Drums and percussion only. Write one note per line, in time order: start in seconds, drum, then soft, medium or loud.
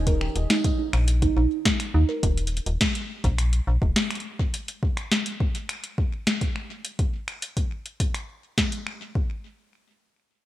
0.07 kick loud
0.07 closed hi-hat medium
0.21 finger snap medium
0.36 closed hi-hat soft
0.50 snare loud
0.50 closed hi-hat medium
0.64 kick loud
0.64 closed hi-hat medium
0.93 finger snap medium
0.93 closed hi-hat soft
1.08 closed hi-hat medium
1.22 kick loud
1.22 closed hi-hat medium
1.65 kick loud
1.65 snare loud
1.65 closed hi-hat medium
1.80 finger snap medium
1.80 closed hi-hat medium
2.23 kick loud
2.23 closed hi-hat medium
2.38 closed hi-hat soft
2.47 closed hi-hat soft
2.57 closed hi-hat soft
2.66 closed hi-hat soft
2.81 kick loud
2.81 snare loud
2.81 closed hi-hat medium
2.95 closed hi-hat medium
3.24 kick loud
3.24 closed hi-hat soft
3.38 finger snap medium
3.38 closed hi-hat medium
3.53 closed hi-hat medium
3.82 kick loud
3.96 snare loud
3.96 closed hi-hat medium
4.11 finger snap medium
4.11 closed hi-hat soft
4.15 closed hi-hat soft
4.20 closed hi-hat soft
4.39 kick loud
4.54 closed hi-hat medium
4.68 closed hi-hat medium
4.83 kick loud
4.97 finger snap soft
4.97 closed hi-hat soft
5.12 snare loud
5.12 closed hi-hat medium
5.26 closed hi-hat medium
5.40 kick loud
5.55 closed hi-hat soft
5.69 finger snap medium
5.69 closed hi-hat medium
5.84 closed hi-hat medium
5.98 kick loud
6.27 snare loud
6.27 closed hi-hat medium
6.41 kick loud
6.41 closed hi-hat medium
6.56 finger snap soft
6.85 closed hi-hat medium
6.99 kick loud
6.99 closed hi-hat soft
7.28 finger snap medium
7.28 closed hi-hat soft
7.42 closed hi-hat medium
7.57 kick loud
7.57 closed hi-hat medium
7.86 closed hi-hat soft
8.00 kick loud
8.00 closed hi-hat medium
8.14 finger snap soft
8.14 closed hi-hat medium
8.58 kick loud
8.58 snare loud
8.58 closed hi-hat medium
8.72 closed hi-hat soft
8.87 finger snap medium
9.15 kick loud